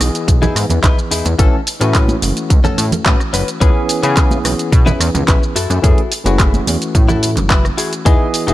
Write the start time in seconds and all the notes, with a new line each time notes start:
Already playing: E3 B3 G#4 D#5
0.00 B1, cross-stick, open hi-hat, high conga, shaker
0.15 closed hi-hat, shaker
0.28 B1, muted clean electric guitar stroke, kick, closed hi-hat, shaker
0.42 D#4 E4 G#4, closed hi-hat, low conga, shaker
0.56 G#2, cross-stick, open hi-hat, shaker
0.70 E2, closed hi-hat, low conga, shaker
0.83 B1 D#4 E4 B4, kick, clap, closed hi-hat, shaker
0.99 shaker
1.11 E2 D#4 E4 G#4, open hi-hat, shaker
1.25 E2, closed hi-hat, muted conga, shaker
1.38 A1 E3 A3 C#4 F#4 A4, kick, closed hi-hat, shaker
1.67 open hi-hat, shaker
1.80 A2 E3 A3 C#4 F#4 B4, closed hi-hat, muted conga, shaker
1.95 kick, clap, closed hi-hat, shaker
2.08 closed hi-hat, high conga, shaker
2.22 F#1, open hi-hat, high conga, shaker
2.37 closed hi-hat, shaker
2.50 C#2, muted clean electric guitar stroke, kick, closed hi-hat, shaker
2.64 A2 C#4 F#4 A4, closed hi-hat, low conga, shaker
2.78 A2, open hi-hat, shaker
2.92 A2, closed hi-hat, low conga, shaker
3.05 A2 C#4 F#4 B4, kick, clap, closed hi-hat, shaker
3.20 cross-stick, shaker
3.33 F#1 C#4 F#4 B4, open hi-hat, shaker
3.48 closed hi-hat, shaker
3.60 C#2 E3 B3 C#4 E4 G#4 B4, kick, closed hi-hat, shaker
3.89 open hi-hat, shaker
4.02 C#3 E3 B3 C#4 E4 G#4 B4, closed hi-hat, shaker
4.17 kick, clap, closed hi-hat, shaker
4.31 closed hi-hat, high conga, shaker
4.44 B1, cross-stick, open hi-hat, high conga, shaker
4.59 closed hi-hat, shaker
4.72 B2, muted clean electric guitar stroke, kick, closed hi-hat, shaker
4.86 C#4 E4 B4, closed hi-hat, low conga, shaker
5.00 E2, cross-stick, open hi-hat, shaker
5.14 C#2, closed hi-hat, low conga, shaker
5.28 B1 C#4 E4 B4, kick, clap, closed hi-hat, shaker
5.43 shaker
5.56 F#2 E4 F#4 A4, open hi-hat, shaker
5.70 F#2, closed hi-hat, muted conga, shaker
5.82 F#2 E3 A3 C#4 G#4, kick, closed hi-hat, shaker
5.98 closed hi-hat
6.12 open hi-hat, shaker
6.24 F#1 E3 A3 C#4 E4 F#4 G#4, closed hi-hat, muted conga, shaker
6.39 kick, clap, closed hi-hat, shaker
6.54 closed hi-hat, high conga, shaker
6.67 E2, open hi-hat, high conga, shaker
6.82 closed hi-hat, shaker
6.95 A2, muted clean electric guitar stroke, kick, closed hi-hat, shaker
7.08 E4 F#4 A4, closed hi-hat, low conga, shaker
7.23 open hi-hat, shaker
7.37 F#1, clap, closed hi-hat, low conga, shaker
7.50 E4 F#4 B4, kick, clap, closed hi-hat, shaker
7.65 cross-stick, shaker
7.77 E4 F#4 G#4, open hi-hat, shaker
7.93 closed hi-hat, shaker
8.05 E2 E3 B3 D#4 E4 G#4 D#5, kick, closed hi-hat, shaker
8.34 open hi-hat, shaker
8.47 E1 E3 B3 D#4 E4 F#4 G#4 D#5, closed hi-hat, shaker